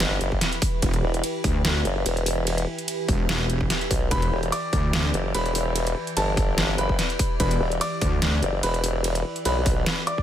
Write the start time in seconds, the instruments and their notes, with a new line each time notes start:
Already playing: wobble bass G1, ambient pad E3 E4 G4 B4
0.00 snare, closed hi-hat, ride
0.21 wobble bass F#1, closed hi-hat
0.32 kick
0.41 snare, closed hi-hat, ride
0.52 closed hi-hat
0.62 kick, open hi-hat
0.82 wobble bass E1, kick, closed hi-hat, ride
0.94 closed hi-hat
1.03 wobble bass E1
1.14 closed hi-hat
1.24 closed hi-hat, ride
1.44 wobble bass D2, kick, open hi-hat
1.65 snare, closed hi-hat, ride
1.85 wobble bass F#1, closed hi-hat
2.06 wobble bass E1, closed hi-hat, ride
2.17 closed hi-hat
2.26 open hi-hat
2.47 closed hi-hat, ride
2.58 closed hi-hat
2.78 closed hi-hat
2.88 closed hi-hat, ride
3.08 wobble bass E1, kick, open hi-hat
3.29 snare, closed hi-hat, ride
3.50 closed hi-hat
3.61 kick
3.70 snare, closed hi-hat, ride
3.81 closed hi-hat
3.91 wobble bass B1, kick, open hi-hat
4.11 wobble bass E1, grand piano B4 B5, ambient pad D5, kick, closed hi-hat, ride
4.22 closed hi-hat
4.32 wobble bass E1
4.43 closed hi-hat
4.52 grand piano D5 D6, closed hi-hat, ride
4.73 wobble bass D2, kick, open hi-hat
4.93 snare, closed hi-hat, ride
5.14 wobble bass F#1, closed hi-hat
5.35 wobble bass E1, grand piano B4 B5, closed hi-hat, ride
5.46 closed hi-hat
5.55 open hi-hat
5.76 closed hi-hat, ride
5.87 closed hi-hat
6.07 closed hi-hat
6.17 wobble bass G1, grand piano A4 A5, closed hi-hat, ride
6.37 kick, open hi-hat
6.58 snare, closed hi-hat, ride
6.78 wobble bass F#1, grand piano B4 B5, closed hi-hat
6.89 kick
6.99 snare, closed hi-hat, ride
7.10 closed hi-hat
7.19 kick, open hi-hat
7.40 wobble bass E1, grand piano B4 B5, kick, closed hi-hat, ride
7.51 closed hi-hat
7.60 wobble bass E1
7.72 closed hi-hat
7.81 grand piano D5 D6, closed hi-hat, ride
8.01 wobble bass D2, kick, open hi-hat
8.22 snare, closed hi-hat, ride
8.43 wobble bass F#1, closed hi-hat
8.63 wobble bass E1, grand piano B4 B5, closed hi-hat, ride
8.74 closed hi-hat
8.84 open hi-hat
9.04 closed hi-hat, ride
9.15 closed hi-hat
9.36 closed hi-hat
9.45 wobble bass B1, grand piano B4 B5, closed hi-hat, ride
9.66 kick, open hi-hat
9.86 snare, closed hi-hat, ride
10.07 grand piano D5 D6, closed hi-hat
10.18 kick